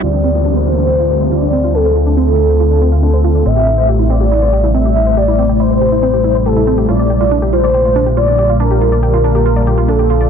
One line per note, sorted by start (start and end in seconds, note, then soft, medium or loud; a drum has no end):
0.03 3.44 D2 medium
0.03 0.09 F4 medium
0.03 0.59 D5 medium
0.03 downlifter medium
0.14 0.17 D4 medium
0.24 0.31 C4 medium
0.24 closed hi-hat medium
0.35 0.45 F4 medium
0.35 closed hi-hat soft
0.46 0.55 D4 medium
0.46 closed hi-hat medium
0.56 0.66 C5 medium
0.67 0.74 F4 medium
0.67 1.23 C5 medium
0.67 closed hi-hat medium
0.78 0.82 D4 medium
0.78 closed hi-hat soft
0.88 0.95 C4 medium
0.88 closed hi-hat medium
0.99 1.09 F4 medium
0.99 closed hi-hat soft
1.10 1.20 D4 medium
1.10 closed hi-hat medium
1.21 1.30 C5 medium
1.21 closed hi-hat soft
1.31 1.38 F4 medium
1.31 1.72 D5 medium
1.31 closed hi-hat medium
1.42 1.46 D4 medium
1.42 closed hi-hat soft
1.53 1.59 C4 medium
1.53 closed hi-hat medium
1.64 1.73 F4 medium
1.64 closed hi-hat soft
1.74 1.84 D4 medium
1.74 2.15 A4 medium
1.74 closed hi-hat medium
1.85 1.95 C5 medium
1.85 closed hi-hat soft
1.96 2.02 F4 medium
1.96 closed hi-hat medium
2.06 2.10 D4 medium
2.06 closed hi-hat soft
2.17 2.24 C4 medium
2.17 2.94 A4 loud
2.17 closed hi-hat medium
2.28 2.38 F4 medium
2.28 closed hi-hat soft
2.39 2.48 D4 medium
2.39 closed hi-hat medium
2.49 2.59 C5 medium
2.49 closed hi-hat soft
2.60 2.66 F4 medium
2.60 closed hi-hat medium
2.71 2.75 D4 medium
2.71 closed hi-hat soft
2.81 2.88 C4 medium
2.81 closed hi-hat medium
2.92 3.02 F4 medium
2.92 closed hi-hat soft
3.03 3.13 D4 medium
3.03 3.44 A4 medium
3.03 closed hi-hat medium
3.13 3.23 C5 medium
3.13 closed hi-hat soft
3.24 3.31 F4 medium
3.24 closed hi-hat medium
3.35 3.39 D4 medium
3.35 closed hi-hat soft
3.46 6.86 A1 medium
3.46 3.52 C4 loud
3.46 4.01 E5 loud
3.46 closed hi-hat medium
3.56 3.66 G4 medium
3.56 closed hi-hat soft
3.67 3.77 E4 medium
3.67 closed hi-hat medium
3.78 3.88 C5 medium
3.78 closed hi-hat soft
3.88 3.95 G4 medium
3.88 closed hi-hat medium
3.99 4.03 E4 medium
4.10 4.16 C4 loud
4.10 4.66 D5 medium
4.10 closed hi-hat medium
4.21 4.30 G4 medium
4.21 closed hi-hat soft
4.31 4.41 E4 medium
4.31 closed hi-hat medium
4.42 4.52 C5 medium
4.42 closed hi-hat soft
4.53 4.59 G4 medium
4.53 closed hi-hat medium
4.64 4.68 E4 medium
4.64 closed hi-hat soft
4.74 4.81 C4 medium
4.74 5.15 E5 medium
4.74 closed hi-hat medium
4.85 4.95 G4 medium
4.85 closed hi-hat soft
4.96 5.06 E4 medium
4.96 closed hi-hat medium
5.06 5.16 C5 medium
5.06 closed hi-hat soft
5.17 5.24 G4 medium
5.17 5.58 D5 medium
5.17 closed hi-hat medium
5.28 5.32 E4 medium
5.28 closed hi-hat soft
5.38 5.45 C4 medium
5.38 closed hi-hat medium
5.49 5.59 G4 medium
5.49 closed hi-hat soft
5.60 5.70 E4 medium
5.60 6.37 C5 loud
5.60 closed hi-hat medium
5.71 5.80 C5 medium
5.71 closed hi-hat soft
5.81 5.88 G4 medium
5.81 closed hi-hat medium
5.92 5.96 E4 medium
5.92 closed hi-hat soft
6.03 6.09 C4 medium
6.03 closed hi-hat medium
6.14 6.23 G4 medium
6.14 closed hi-hat soft
6.24 6.34 E4 medium
6.24 closed hi-hat medium
6.35 6.45 C5 medium
6.35 closed hi-hat soft
6.46 6.52 G4 medium
6.46 6.86 A4 medium
6.46 closed hi-hat medium
6.56 6.60 E4 medium
6.56 closed hi-hat soft
6.67 6.74 C4 medium
6.67 closed hi-hat medium
6.78 6.88 G4 medium
6.78 closed hi-hat soft
6.89 10.29 A#1 medium
6.89 6.98 F4 medium
6.89 7.44 D5 medium
6.89 closed hi-hat medium
6.99 7.09 D5 medium
6.99 closed hi-hat soft
7.10 7.16 G4 medium
7.10 closed hi-hat medium
7.21 7.25 F4 medium
7.21 closed hi-hat soft
7.31 7.38 D4 medium
7.31 closed hi-hat medium
7.42 7.52 G4 medium
7.53 7.63 F4 medium
7.53 8.09 C5 medium
7.53 closed hi-hat medium
7.64 7.73 D5 medium
7.64 closed hi-hat soft
7.74 7.81 G4 medium
7.74 closed hi-hat medium
7.85 7.89 F4 medium
7.85 closed hi-hat soft
7.96 8.02 D4 loud
7.96 closed hi-hat medium
8.06 8.16 G4 medium
8.06 closed hi-hat soft
8.17 8.27 F4 medium
8.17 8.58 D5 medium
8.17 closed hi-hat medium
8.28 8.38 D5 medium
8.28 closed hi-hat soft
8.39 8.45 G4 medium
8.39 closed hi-hat medium
8.49 8.53 F4 medium
8.49 closed hi-hat soft
8.60 8.67 D4 loud
8.60 9.01 A#4 medium
8.60 closed hi-hat medium
8.71 8.80 G4 medium
8.71 closed hi-hat soft
8.81 8.91 F4 medium
8.81 closed hi-hat medium
8.92 9.02 D5 medium
8.92 closed hi-hat soft
9.03 9.09 G4 medium
9.03 9.80 A#4 loud
9.03 closed hi-hat medium
9.13 9.17 F4 medium
9.13 closed hi-hat soft
9.24 9.31 D4 medium
9.24 closed hi-hat medium
9.35 9.45 G4 medium
9.35 closed hi-hat soft
9.46 9.55 F4 medium
9.46 closed hi-hat medium
9.56 9.66 D5 medium
9.56 closed hi-hat soft
9.67 9.74 G4 medium
9.67 closed hi-hat medium
9.78 9.82 F4 medium
9.78 closed hi-hat soft
9.88 9.95 D4 medium
9.88 10.29 A4 medium
9.88 closed hi-hat medium
9.99 10.09 G4 medium
9.99 closed hi-hat soft
10.10 10.20 F4 medium
10.10 closed hi-hat medium
10.21 10.30 D5 medium
10.21 closed hi-hat soft